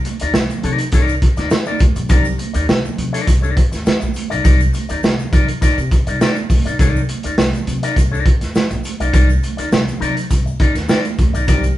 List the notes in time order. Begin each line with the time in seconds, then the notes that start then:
0.05 muted clean electric guitar stroke, closed hi-hat, high conga, shaker
0.20 D#2 D#4 A#4 D5, closed hi-hat, shaker
0.34 C2, snare, shaker
0.49 muted clean electric guitar stroke, closed hi-hat, muted conga, high conga, low conga, shaker
0.63 C3 D#4 A#4 D5, closed hi-hat, low conga, shaker
0.78 muted clean electric guitar stroke, closed hi-hat, shaker
0.92 C2 D#4 A#4 D5, kick, closed hi-hat, muted conga, shaker
1.08 closed hi-hat, shaker
1.22 muted clean electric guitar stroke, kick, closed hi-hat
1.37 D#2 D#4 A#4 D5, snare, closed hi-hat, shaker
1.50 snare, high conga, shaker
1.66 D#4 A#4 D5, muted conga, high conga, shaker
1.79 D#2, muted clean electric guitar stroke, kick, closed hi-hat, high conga, shaker
1.96 B1, muted clean electric guitar stroke, closed hi-hat, shaker
2.09 C2 D#4 A#4 D5, kick, closed hi-hat, muted conga, low conga, shaker
2.25 shaker
2.38 muted clean electric guitar stroke, closed hi-hat, high conga, shaker
2.54 D#2 D#4 A#4 D5, closed hi-hat, shaker
2.68 C2, muted clean electric guitar stroke, snare, shaker
2.84 muted clean electric guitar stroke, muted conga, high conga, low conga, shaker
2.98 C3, closed hi-hat, low conga, shaker
3.13 D#4 A#4 D5, closed hi-hat, shaker
3.27 C2, muted clean electric guitar stroke, kick, closed hi-hat, muted conga, shaker
3.42 D#4 A#4 D5, muted conga, shaker
3.56 muted clean electric guitar stroke, kick, closed hi-hat
3.72 D#2, muted clean electric guitar stroke, snare, closed hi-hat, shaker
3.85 muted clean electric guitar stroke, muted upright bass stroke, snare, muted conga, high conga, shaker
4.00 A#1, muted clean electric guitar stroke, muted conga, high conga, shaker
4.14 closed hi-hat, high conga, shaker
4.30 B1 D#4 A#4 D5, closed hi-hat, shaker
4.44 C2 D#4 A#4 D5, kick, closed hi-hat, low conga, shaker
4.60 closed hi-hat, shaker
4.73 muted clean electric guitar stroke, closed hi-hat, high conga, shaker
4.89 D#2 D#4 A#4 D5, closed hi-hat, shaker
5.03 C2, snare, muted conga, shaker
5.18 muted clean electric guitar stroke, high conga, low conga, shaker
5.32 C3 D#4 A#4 D5, kick, closed hi-hat, low conga, shaker
5.48 muted clean electric guitar stroke, closed hi-hat, shaker
5.61 D#4 A#4 D5, kick, closed hi-hat, muted conga, shaker
5.77 C3, closed hi-hat, muted conga, shaker
5.91 muted clean electric guitar stroke, kick, closed hi-hat, shaker
6.07 C2 D#4 A#4 D5, closed hi-hat, shaker
6.20 D#4 A#4 D5, snare, high conga, shaker
6.36 high conga, shaker
6.50 C2, muted clean electric guitar stroke, kick, open hi-hat, high conga, shaker
6.65 B1 D#4 A#4 D5, closed hi-hat, shaker
6.79 C2 D#4 A#4 D5, kick, closed hi-hat, low conga, shaker
6.96 shaker
7.09 muted clean electric guitar stroke, closed hi-hat, high conga, shaker
7.23 D#2 D#4 A#4 D5, closed hi-hat, shaker
7.38 C2, snare, shaker
7.53 muted clean electric guitar stroke, closed hi-hat, high conga, low conga, shaker
7.67 C3, closed hi-hat, low conga, shaker
7.83 D#4 A#4 D5, closed hi-hat, shaker
7.96 C2, muted clean electric guitar stroke, kick, closed hi-hat, muted conga, shaker
8.12 D#4 A#4 D5, muted conga, shaker
8.25 muted clean electric guitar stroke, kick, closed hi-hat
8.41 D#2, muted clean electric guitar stroke, snare, closed hi-hat, shaker
8.54 muted clean electric guitar stroke, muted upright bass stroke, snare, muted conga, high conga, shaker
8.70 A#1, muted clean electric guitar stroke, closed hi-hat, muted conga, high conga, shaker
8.84 closed hi-hat, high conga, shaker
9.00 B1 D#4 A#4 D5, closed hi-hat, shaker
9.13 C2 D#4 A#4 D5, kick, closed hi-hat, low conga, shaker
9.30 muted conga, shaker
9.43 muted clean electric guitar stroke, closed hi-hat, high conga, shaker
9.57 D#2 D#4 A#4 D5, closed hi-hat, shaker
9.72 C2, snare, muted conga, shaker
9.87 muted clean electric guitar stroke, closed hi-hat, high conga, low conga, shaker
10.00 C3 D#4 A#4 D5, closed hi-hat, low conga, shaker
10.16 muted clean electric guitar stroke, closed hi-hat, shaker
10.31 C2, kick, closed hi-hat, shaker
10.46 muted clean electric guitar stroke, muted conga, shaker
10.60 D#4 A#4 D5, kick, closed hi-hat
10.75 D#2, muted clean electric guitar stroke, snare, closed hi-hat, shaker
10.88 D#4 A#4 D5, snare, muted conga, high conga, shaker
11.05 closed hi-hat, high conga, shaker
11.18 D#2, muted clean electric guitar stroke, kick, closed hi-hat, high conga, shaker
11.33 B1 D#4 A#4 D5, closed hi-hat, shaker
11.47 C2 D#4 A#4 D5, kick, closed hi-hat, low conga, shaker
11.63 closed hi-hat, muted conga, shaker